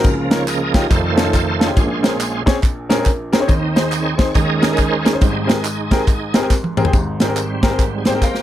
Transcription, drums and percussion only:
0.04 kick, tambourine, splash
0.31 snare, closed hi-hat, tambourine
0.48 clap, closed hi-hat, tambourine
0.74 kick, snare, closed hi-hat, tambourine
0.91 kick, clap, closed hi-hat, tambourine
1.17 snare, closed hi-hat, tambourine
1.34 kick, clap, closed hi-hat, tambourine
1.61 snare, closed hi-hat, tambourine
1.77 kick, closed hi-hat, tambourine
2.04 snare, closed hi-hat, tambourine
2.21 clap, closed hi-hat, tambourine
2.47 kick, snare, closed hi-hat, tambourine
2.63 kick, clap, closed hi-hat, tambourine
2.90 snare, closed hi-hat, tambourine
3.06 kick, clap, closed hi-hat, tambourine
3.33 snare, closed hi-hat, tambourine
3.49 kick, closed hi-hat, tambourine
3.76 snare, closed hi-hat, tambourine
3.92 clap, closed hi-hat, tambourine
4.19 kick, snare, closed hi-hat, tambourine
4.35 kick, clap, closed hi-hat, tambourine
4.62 snare, closed hi-hat, tambourine
4.78 kick, clap, closed hi-hat, tambourine
5.05 snare, closed hi-hat, tambourine
5.21 kick, closed hi-hat, tambourine
5.49 snare, closed hi-hat, tambourine
5.65 clap, closed hi-hat, tambourine
5.91 kick, snare, closed hi-hat, tambourine
6.08 kick, clap, closed hi-hat, tambourine
6.34 snare, closed hi-hat, tambourine
6.50 kick, snare, clap, tambourine
6.64 high tom
6.77 mid tom, tambourine
6.85 floor tom
6.93 kick, closed hi-hat, tambourine
7.20 snare, closed hi-hat, tambourine
7.37 clap, closed hi-hat, tambourine
7.63 kick, snare, closed hi-hat, tambourine
7.79 kick, clap, closed hi-hat, tambourine
8.05 snare, closed hi-hat, tambourine
8.22 kick, snare, clap, tambourine
8.35 snare

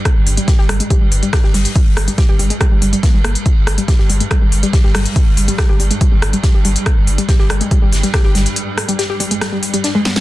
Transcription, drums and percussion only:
0.05 kick, cross-stick, closed hi-hat
0.27 open hi-hat, ride
0.37 closed hi-hat
0.48 kick, snare, closed hi-hat, ride
0.59 snare
0.69 cross-stick, open hi-hat, ride
0.80 closed hi-hat
0.90 kick, closed hi-hat, ride
1.02 ride
1.11 open hi-hat, ride
1.23 closed hi-hat
1.33 kick, cross-stick, snare, closed hi-hat
1.44 snare
1.54 open hi-hat
1.65 closed hi-hat
1.75 kick, closed hi-hat, ride
1.96 cross-stick, open hi-hat, ride
2.07 closed hi-hat, ride
2.18 kick, snare, closed hi-hat, ride
2.39 open hi-hat, ride
2.50 closed hi-hat
2.61 kick, cross-stick, closed hi-hat
2.82 open hi-hat, ride
2.93 closed hi-hat, ride
3.03 kick, snare, closed hi-hat
3.24 cross-stick, open hi-hat, ride
3.35 closed hi-hat
3.45 kick, closed hi-hat, ride
3.67 cross-stick, open hi-hat, ride
3.78 closed hi-hat
3.88 kick, snare, closed hi-hat, ride
3.99 snare
4.09 open hi-hat, ride
4.20 closed hi-hat
4.31 kick, cross-stick, closed hi-hat
4.41 ride
4.52 open hi-hat, ride
4.63 closed hi-hat
4.73 kick, snare, closed hi-hat, ride
4.85 snare
4.95 cross-stick, open hi-hat
5.06 closed hi-hat
5.16 kick, closed hi-hat, ride
5.37 open hi-hat, ride
5.48 closed hi-hat, ride
5.58 kick, cross-stick, snare, closed hi-hat
5.80 open hi-hat, ride
5.91 closed hi-hat
6.01 kick, closed hi-hat, ride
6.22 cross-stick, open hi-hat, ride
6.33 closed hi-hat, ride
6.43 kick, snare, closed hi-hat, ride
6.64 open hi-hat, ride
6.76 closed hi-hat
6.86 kick, cross-stick, closed hi-hat
7.07 open hi-hat, ride
7.18 closed hi-hat
7.28 kick, snare, closed hi-hat, ride
7.39 snare
7.50 cross-stick, open hi-hat, ride
7.61 closed hi-hat
7.71 kick, closed hi-hat, ride
7.82 ride
7.92 snare, open hi-hat, ride
8.03 snare, closed hi-hat
8.14 kick, cross-stick, snare, closed hi-hat
8.24 snare
8.35 snare, open hi-hat, ride
8.46 snare, closed hi-hat
8.56 closed hi-hat, ride
8.78 cross-stick, open hi-hat
8.88 closed hi-hat, ride
8.99 snare, closed hi-hat, ride
9.20 open hi-hat, ride
9.31 closed hi-hat
9.41 cross-stick, snare, closed hi-hat
9.63 open hi-hat, ride
9.74 closed hi-hat, ride
9.84 snare, closed hi-hat, ride
10.05 snare, open hi-hat
10.16 snare, closed hi-hat

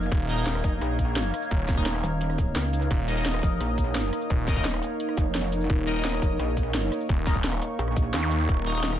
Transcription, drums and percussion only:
0.03 shaker
0.12 kick, closed hi-hat
0.29 closed hi-hat, shaker
0.38 shaker
0.47 snare, closed hi-hat
0.55 cross-stick
0.64 kick, closed hi-hat, shaker
0.81 cross-stick, closed hi-hat
0.99 kick, closed hi-hat, shaker
1.16 snare, closed hi-hat
1.34 cross-stick, closed hi-hat, shaker
1.42 shaker
1.51 kick, closed hi-hat
1.69 kick, snare, closed hi-hat, shaker
1.77 kick, shaker
1.86 snare, closed hi-hat
1.95 cross-stick
2.04 closed hi-hat, shaker
2.21 closed hi-hat
2.30 cross-stick
2.38 kick, closed hi-hat, shaker
2.56 snare, closed hi-hat
2.73 closed hi-hat, shaker
2.82 closed hi-hat, shaker
2.91 kick, closed hi-hat, crash
3.08 closed hi-hat, shaker
3.17 shaker
3.26 snare, closed hi-hat
3.34 cross-stick
3.43 kick, closed hi-hat, shaker
3.61 cross-stick, closed hi-hat
3.78 kick, closed hi-hat, shaker
3.95 snare, closed hi-hat
4.13 cross-stick, closed hi-hat, shaker
4.22 shaker
4.30 kick, closed hi-hat
4.48 kick, snare, closed hi-hat, shaker
4.56 kick, shaker
4.65 snare, closed hi-hat
4.74 cross-stick
4.83 closed hi-hat, shaker
5.00 closed hi-hat
5.09 cross-stick
5.17 kick, closed hi-hat, shaker
5.35 snare, closed hi-hat
5.52 closed hi-hat, shaker
5.61 shaker
5.70 kick, closed hi-hat
5.87 closed hi-hat, shaker
5.96 shaker
6.05 snare, closed hi-hat
6.13 cross-stick
6.22 kick, closed hi-hat, shaker
6.39 cross-stick, closed hi-hat
6.57 kick, closed hi-hat, shaker
6.74 snare, closed hi-hat
6.92 cross-stick, closed hi-hat, shaker
7.01 shaker
7.09 kick, closed hi-hat
7.27 kick, snare, closed hi-hat, shaker
7.35 kick, shaker
7.44 snare, closed hi-hat
7.53 cross-stick, closed hi-hat
7.62 closed hi-hat, shaker
7.79 closed hi-hat
7.88 cross-stick
7.96 kick, closed hi-hat, shaker
8.14 snare, closed hi-hat
8.31 closed hi-hat, shaker
8.40 closed hi-hat, shaker
8.49 kick, closed hi-hat
8.66 closed hi-hat, shaker
8.75 shaker
8.84 snare, closed hi-hat
8.92 cross-stick

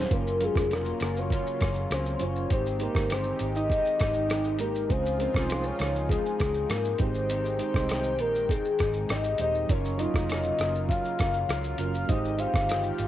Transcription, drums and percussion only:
0.11 kick, closed hi-hat, shaker
0.27 shaker
0.40 closed hi-hat, shaker
0.55 kick, cross-stick, shaker
0.71 cross-stick, closed hi-hat, shaker
0.85 shaker
1.00 cross-stick, closed hi-hat, shaker
1.17 shaker
1.30 kick, closed hi-hat, shaker
1.46 shaker
1.61 kick, cross-stick, closed hi-hat, shaker
1.74 shaker
1.91 cross-stick, closed hi-hat, shaker
2.06 shaker
2.19 closed hi-hat, shaker
2.36 shaker
2.50 kick, closed hi-hat, shaker
2.66 shaker
2.80 closed hi-hat, shaker
2.95 kick, cross-stick, shaker
3.10 cross-stick, closed hi-hat, shaker
3.23 shaker
3.39 closed hi-hat, shaker
3.55 shaker
3.70 kick, closed hi-hat, shaker
3.86 shaker
4.00 kick, cross-stick, closed hi-hat, shaker
4.14 shaker
4.30 cross-stick, closed hi-hat, shaker
4.44 shaker
4.59 closed hi-hat, shaker
4.75 shaker
4.90 kick, closed hi-hat, shaker
5.06 shaker
5.20 closed hi-hat, shaker
5.35 kick, cross-stick, shaker
5.50 cross-stick, closed hi-hat, shaker
5.64 shaker
5.79 cross-stick, closed hi-hat, shaker
5.96 shaker
6.09 kick, closed hi-hat, shaker
6.26 shaker
6.40 kick, cross-stick, closed hi-hat, shaker
6.54 shaker
6.70 cross-stick, closed hi-hat, shaker
6.85 shaker
6.98 kick, closed hi-hat, shaker
7.15 shaker
7.30 closed hi-hat, shaker
7.45 shaker
7.59 closed hi-hat, shaker
7.74 kick, cross-stick, shaker
7.89 cross-stick, closed hi-hat, shaker
8.03 shaker
8.19 closed hi-hat, shaker
8.35 shaker
8.49 kick, closed hi-hat, shaker
8.65 shaker
8.79 kick, cross-stick, closed hi-hat, shaker
8.93 shaker
9.09 cross-stick, closed hi-hat, shaker
9.24 shaker
9.38 closed hi-hat, shaker
9.55 shaker
9.69 kick, closed hi-hat, shaker
9.85 shaker
9.99 closed hi-hat, shaker
10.14 kick, cross-stick, shaker
10.29 cross-stick, closed hi-hat, shaker
10.43 shaker
10.58 cross-stick, closed hi-hat, shaker
10.75 shaker
10.89 kick, closed hi-hat, shaker
11.05 shaker
11.19 kick, cross-stick, closed hi-hat, shaker
11.33 shaker
11.49 cross-stick, closed hi-hat, shaker
11.64 shaker
11.78 closed hi-hat, shaker
11.94 shaker
12.09 kick, closed hi-hat, shaker
12.25 shaker
12.39 closed hi-hat, shaker
12.54 kick, cross-stick, shaker
12.69 cross-stick, closed hi-hat, shaker
12.83 shaker
12.99 closed hi-hat, shaker

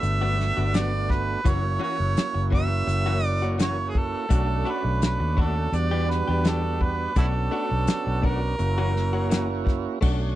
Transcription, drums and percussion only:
0.03 closed hi-hat
0.40 snare
0.74 snare, closed hi-hat
1.10 kick, snare
1.45 kick, closed hi-hat
2.17 snare, closed hi-hat
2.52 kick
2.89 closed hi-hat
3.59 snare, closed hi-hat
3.95 kick
4.30 kick, closed hi-hat
5.02 snare, closed hi-hat
5.38 kick
5.73 closed hi-hat
6.10 snare
6.44 snare, closed hi-hat
6.81 kick
7.16 kick, closed hi-hat
7.87 snare, closed hi-hat
8.24 kick
8.59 closed hi-hat
8.96 snare
9.31 snare, closed hi-hat
9.67 kick, snare
10.02 kick, crash

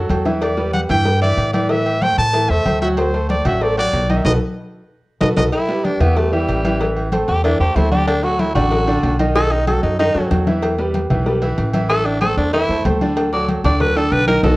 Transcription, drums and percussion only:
0.09 cowbell, high conga, low agogo
0.26 low bongo, high conga, low agogo
0.42 cowbell, high conga, low agogo
0.57 cowbell, high conga
0.73 cowbell, high conga, low agogo
0.89 cowbell, high conga, low conga, low agogo
1.05 cowbell, high conga
1.22 high conga, low agogo
1.38 cowbell, high conga, low agogo
1.53 cowbell, high conga, low agogo
1.69 cowbell, high conga
1.86 high conga, low agogo
2.01 cowbell, high conga, low agogo
2.17 cowbell, high conga
2.33 cowbell, high conga, low agogo
2.50 high conga
2.66 cowbell, high conga, low agogo
2.82 high conga, low agogo
2.97 cowbell, low agogo
3.14 cowbell, high conga
3.29 cowbell, high conga, low agogo
3.45 cowbell, high conga, low conga, low agogo
3.61 cowbell, high conga
3.77 high conga, low agogo
3.93 cowbell, high conga, low timbale, low agogo
4.09 cowbell, high conga, low agogo
4.25 cowbell, high conga, high timbale
5.20 cowbell, high conga, high timbale
5.36 cowbell, high conga, high timbale
5.52 cowbell, high conga, low agogo
5.69 cowbell, high conga
5.85 cowbell, high conga, low agogo
6.01 cowbell, high conga, low conga, low agogo
6.16 cowbell, high conga
6.33 high conga, low agogo
6.48 cowbell, high conga, low agogo
6.64 cowbell, high conga, low agogo
6.80 cowbell, high conga
6.96 high conga, low agogo
7.12 cowbell, high conga, low agogo
7.28 cowbell, high conga
7.44 cowbell, high conga, low agogo
7.60 high conga
7.76 cowbell, high conga, low timbale, low agogo
7.92 high conga, low agogo
8.07 cowbell, high conga, low agogo
8.23 cowbell, high conga
8.39 cowbell, high conga, low agogo
8.55 cowbell, high conga, low conga, low agogo
8.71 cowbell, high conga
8.87 high conga, low agogo
9.03 cowbell, high conga, low timbale, low agogo
9.19 cowbell, high conga, low agogo
9.35 cowbell, high bongo, high conga
9.51 high bongo, high conga, low agogo
9.67 cowbell, high bongo, high conga, low agogo
9.83 cowbell, high conga
9.99 cowbell, low bongo, high conga, low agogo
10.15 low bongo, high conga
10.31 cowbell, low bongo, high conga, low agogo
10.47 low bongo, high conga, low agogo
10.62 cowbell, high conga, low agogo
10.79 cowbell, high conga
10.94 cowbell, high conga, low agogo
11.10 cowbell, high conga, low conga, low agogo
11.26 cowbell, high conga
11.42 high conga, low agogo
11.58 cowbell, high conga, low agogo
11.74 cowbell, high conga, low agogo
11.90 cowbell, high conga
12.06 high conga, low agogo
12.21 cowbell, high conga, low agogo
12.38 cowbell, high conga
12.53 cowbell, high conga, low agogo
12.69 high conga
12.85 cowbell, high conga, low timbale, low agogo
13.01 high conga, low agogo
13.17 cowbell, high conga, low agogo
13.33 cowbell, high conga
13.48 cowbell, high conga, low agogo
13.64 cowbell, high conga, low conga, low agogo
13.80 cowbell, high conga, low conga
13.96 high conga, low agogo
14.12 cowbell, high conga, low agogo
14.28 cowbell, high conga, low agogo
14.44 cowbell, high conga, high timbale

